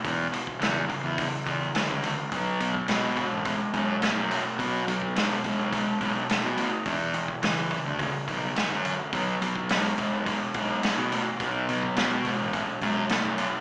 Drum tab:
HH |o-o-o-o-o-o-o-o-|o-o-o-o-o-o-o-o-|o-o-o-o-o-o-o-o-|o-o-o-o-o-o-o-o-|
SD |----o-------o---|----o-------o---|----o-------o---|----o-------o---|
BD |o--o--o-o-o-----|o--o--o-o-o-----|o--o--o-o-o-----|o--o--o-o-o-----|

HH |o-o-o-o-o-o-o-o-|o-o-o-o-o-o-o-o-|
SD |----o-------o---|----o-------o---|
BD |o--o--o-o-o-----|o--o--o-o-o-----|